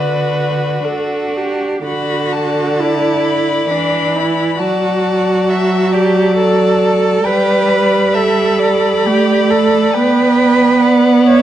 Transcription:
Already playing: D3 F#4 B4 D5
0.85 D4 A4
1.37 G4
1.86 D3 F#4 D5 B5
2.32 A5
2.78 E4 A5
3.25 B5
3.70 E3 D4 B5
4.16 E4
4.59 F#3 F#4 D5 A5
5.49 E5 A5
5.93 G4 D5
6.36 A4 A5
7.24 G3 B4 D5 G5
7.69 B5
8.13 A4 E5 B5
8.59 D5
9.06 A3 G4
9.51 A4
9.94 B3 B4 G5
10.82 D5 F#5
11.26 C#5 E5

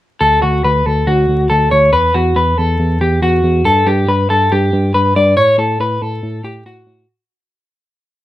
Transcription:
0.21 D2 A4
0.42 D2 F#4
0.64 D2 B4
0.86 D2 A4
1.07 D2 F#4
1.29 D2
1.50 D2 A4
1.71 D2 C#5
1.93 E2 B4
2.14 E2 F#4
2.35 E2 B4
2.58 E2 A4
2.79 E2
3.01 E2 G4
3.22 E2 F#4
3.43 E2
3.65 G2 A4
3.87 G2 G4
4.08 G2 B4
4.30 G2 A4
4.52 G2 G4
4.73 G2
4.94 G2 B4
5.16 G2 D5
5.37 A2 C#5
5.58 A2 A4
5.80 A2 B4
6.01 A2 A4
6.22 A2
6.44 A2 G4
6.65 A2 F#4
6.87 A2

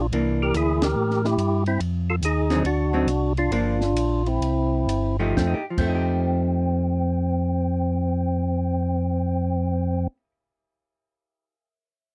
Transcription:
Already playing: A#1
0.00 D4 F4
0.12 C2 E3 A#3 D4, ride
0.42 G4 A#4
0.54 D2 E4 G#4, hi-hat pedal, ride
0.82 G4 A#4, snare, ride
0.96 A2
1.10 snare
1.25 E4 G4, snare
1.37 G2, hi-hat pedal, ride
1.66 C4 E4, ride
1.80 F2, ride
2.10 F4 A4
2.22 D#2 D#4 G#4, hi-hat pedal, ride
2.50 D3 F#3 C4 D#4, snare, ride
2.64 D2 D4 F#4, ride
2.93 D3 F#3 C4 D#4
3.07 C2, hi-hat pedal, ride
3.37 D4 F4, ride
3.51 G1 F3 A#3 D4 F4, ride
3.81 snare
3.94 A#1, hi-hat pedal, ride
4.26 C4 E4, ride
4.40 C2, ride
4.87 G1, hi-hat pedal, ride
5.19 F3 A3 D#4 G4
5.29 F3
5.37 F2 A3 C4, kick, snare
5.47 D#4
5.54 G4
5.70 F3
5.77 F2 A3 C4, kick, crash
5.88 D#4
5.95 G4

